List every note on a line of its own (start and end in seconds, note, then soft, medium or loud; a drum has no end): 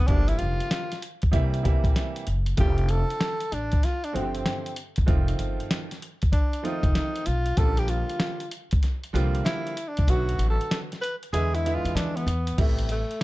0.07 0.35 G1 medium
0.07 0.87 D3 medium
0.07 0.87 F3 medium
0.07 0.87 G3 medium
0.07 0.88 A#3 medium
0.07 0.30 D4 loud
0.07 0.17 E4 medium
0.07 kick loud
0.07 closed hi-hat medium
0.16 0.91 F4 medium
0.28 0.40 E4 loud
0.28 closed hi-hat medium
0.38 0.57 F1 medium
0.38 1.01 F4 loud
0.38 closed hi-hat medium
0.60 closed hi-hat medium
0.71 snare loud
0.71 closed hi-hat medium
0.92 snare soft
0.92 closed hi-hat medium
1.02 closed hi-hat medium
1.22 kick medium
1.22 closed hi-hat soft
1.32 1.77 C2 loud
1.32 1.59 C3 medium
1.32 1.60 E3 medium
1.32 1.60 G3 medium
1.32 1.60 A#3 medium
1.32 1.60 E4 loud
1.32 kick medium
1.32 closed hi-hat medium
1.54 closed hi-hat soft
1.63 2.22 C3 medium
1.63 2.22 E3 medium
1.63 2.22 G3 medium
1.63 2.23 A#3 medium
1.63 2.23 E4 medium
1.63 kick medium
1.63 closed hi-hat medium
1.84 1.93 A#1 medium
1.84 kick medium
1.84 closed hi-hat soft
1.96 snare medium
1.96 closed hi-hat medium
2.16 closed hi-hat medium
2.27 2.54 F#1 medium
2.27 closed hi-hat medium
2.46 closed hi-hat medium
2.57 3.02 F1 loud
2.57 3.37 D3 medium
2.57 3.37 F3 medium
2.57 3.37 A3 medium
2.57 3.37 C4 medium
2.57 3.37 F4 medium
2.57 2.92 G4 loud
2.57 kick loud
2.57 closed hi-hat medium
2.78 closed hi-hat medium
2.89 3.55 A4 loud
2.89 closed hi-hat medium
3.10 closed hi-hat soft
3.21 snare loud
3.21 closed hi-hat medium
3.40 closed hi-hat medium
3.52 3.79 A1 medium
3.52 3.86 D4 medium
3.52 closed hi-hat medium
3.72 kick loud
3.72 closed hi-hat soft
3.83 4.06 F4 medium
3.83 snare soft
3.83 closed hi-hat medium
4.04 4.16 D4 medium
4.04 closed hi-hat soft
4.13 4.41 G1 medium
4.13 4.72 D3 medium
4.13 4.72 F3 medium
4.13 4.72 A3 medium
4.13 4.73 C4 medium
4.13 4.77 C4 medium
4.13 4.23 F#4 medium
4.13 closed hi-hat medium
4.21 4.76 G4 medium
4.35 closed hi-hat soft
4.46 snare medium
4.46 closed hi-hat medium
4.66 closed hi-hat soft
4.76 closed hi-hat medium
4.96 5.07 F#1 medium
4.96 kick medium
4.96 closed hi-hat medium
5.06 5.34 F1 medium
5.06 5.86 D#3 medium
5.06 5.86 F3 medium
5.06 5.87 A3 medium
5.06 5.87 C4 medium
5.06 5.87 F4 medium
5.06 kick loud
5.06 closed hi-hat medium
5.28 closed hi-hat medium
5.39 5.56 G1 medium
5.39 closed hi-hat medium
5.60 closed hi-hat soft
5.71 snare loud
5.71 closed hi-hat medium
5.91 snare soft
5.91 closed hi-hat medium
6.02 closed hi-hat medium
6.22 kick medium
6.22 closed hi-hat medium
6.33 6.66 D4 medium
6.33 kick loud
6.33 closed hi-hat medium
6.53 closed hi-hat soft
6.63 7.22 D#3 medium
6.63 7.22 F3 medium
6.63 7.22 A3 medium
6.63 7.23 C4 medium
6.63 7.28 D#4 medium
6.63 7.23 F4 medium
6.63 closed hi-hat medium
6.83 6.93 F1 loud
6.83 kick medium
6.83 closed hi-hat soft
6.95 snare loud
6.95 closed hi-hat medium
7.16 closed hi-hat medium
7.26 7.53 B1 medium
7.26 7.59 F4 medium
7.26 closed hi-hat medium
7.46 closed hi-hat medium
7.57 8.01 A#1 medium
7.57 7.66 C#3 medium
7.57 8.37 F3 medium
7.57 8.37 G3 medium
7.57 8.37 A#3 medium
7.57 8.37 F4 medium
7.57 7.81 A4 loud
7.57 kick loud
7.57 closed hi-hat medium
7.63 8.40 D3 medium
7.77 7.91 G4 loud
7.77 closed hi-hat medium
7.88 8.52 F4 medium
7.88 closed hi-hat medium
8.09 closed hi-hat soft
8.20 snare loud
8.20 closed hi-hat medium
8.40 closed hi-hat medium
8.51 closed hi-hat medium
8.71 8.82 D2 medium
8.71 kick loud
8.71 closed hi-hat medium
8.83 snare soft
8.83 closed hi-hat medium
9.04 closed hi-hat soft
9.13 9.40 C2 medium
9.13 9.72 D3 medium
9.13 9.72 F3 medium
9.13 9.73 G3 medium
9.13 9.73 A#3 medium
9.13 9.73 F4 loud
9.13 closed hi-hat medium
9.35 closed hi-hat medium
9.45 9.90 E4 medium
9.45 snare loud
9.45 closed hi-hat loud
9.67 closed hi-hat medium
9.77 closed hi-hat medium
9.88 10.11 D4 medium
9.97 10.07 C2 medium
9.97 kick medium
9.97 closed hi-hat medium
10.08 10.34 B1 loud
10.08 10.87 D3 medium
10.08 10.87 F#3 medium
10.08 10.87 A3 medium
10.08 10.88 B3 medium
10.08 10.88 F#4 medium
10.08 10.49 F#4 loud
10.08 closed hi-hat medium
10.29 closed hi-hat medium
10.38 10.56 A1 medium
10.38 closed hi-hat medium
10.50 10.79 A4 medium
10.61 closed hi-hat medium
10.71 snare loud
10.71 closed hi-hat medium
10.92 snare soft
10.92 closed hi-hat medium
11.02 11.16 B4 medium
11.02 closed hi-hat medium
11.23 closed hi-hat soft
11.33 11.77 E2 loud
11.33 11.60 D3 medium
11.33 11.60 E3 medium
11.33 11.60 G#3 medium
11.33 11.61 B3 medium
11.33 11.61 E4 medium
11.33 11.56 G#4 loud
11.33 closed hi-hat medium
11.55 11.76 E4 medium
11.55 closed hi-hat soft
11.64 12.23 D3 medium
11.64 12.23 E3 medium
11.64 12.23 G#3 medium
11.64 12.23 B3 medium
11.64 12.24 E4 medium
11.64 closed hi-hat medium
11.75 11.97 F4 medium
11.85 11.94 E2 medium
11.85 closed hi-hat medium
11.95 12.22 E3 medium
11.95 12.18 D4 medium
11.95 snare medium
11.95 closed hi-hat medium
12.17 12.58 B3 medium
12.17 closed hi-hat medium
12.27 12.53 E2 medium
12.27 closed hi-hat medium
12.47 closed hi-hat medium
12.58 13.02 A1 medium
12.58 12.97 C3 medium
12.58 12.98 G3 medium
12.58 12.98 A3 medium
12.58 12.89 A3 medium
12.58 12.98 B3 medium
12.58 12.98 E4 medium
12.58 kick loud
12.58 closed hi-hat medium
12.58 crash medium
12.79 closed hi-hat medium
12.89 13.23 A3 medium
12.89 closed hi-hat medium
13.11 closed hi-hat soft